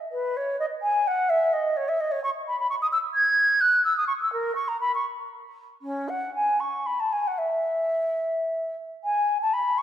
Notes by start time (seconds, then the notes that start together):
0.11 B4
0.37 C#5
0.59 D#5
0.82 G#5
1.07 F#5
1.29 E5
1.53 D#5
1.77 C#5
1.88 E5
2.00 D#5
2.11 C#5
2.23 C#6
2.48 B5
2.60 B5
2.70 C#6
2.82 D#6
2.92 E6
3.14 G#6
3.61 F#6
3.84 E6
3.97 D#6
4.07 C#6
4.22 E6
4.33 A#4
4.55 C#6
4.68 A#5
4.80 B5
4.95 C#6
5.82 C#4
6.09 F#5
6.35 G#5
6.60 C#6
6.86 B5
7.00 A5
7.12 G#5
7.27 F#5
7.38 E5
9.04 G#5
9.42 A5
9.53 B5
9.78 C#6